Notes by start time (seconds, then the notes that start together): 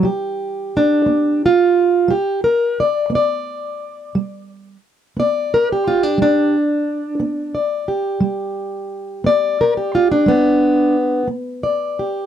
0.03 G3 G4
0.77 D4
1.06 B3
1.46 F4
2.08 G3 G4
2.44 A#4
2.80 D5
3.10 B3
3.15 D5
4.15 G3
5.17 B3 D5
5.54 A#4
5.72 G4
5.87 F4
6.03 D4
6.18 G3
6.22 D4
7.20 B3
7.55 D5
7.88 G4
8.20 G3
9.24 B3 D5
9.61 A#4
9.77 G4
9.95 F4
10.12 D4
10.26 G3 B3
11.28 B3
11.63 D5
11.99 G4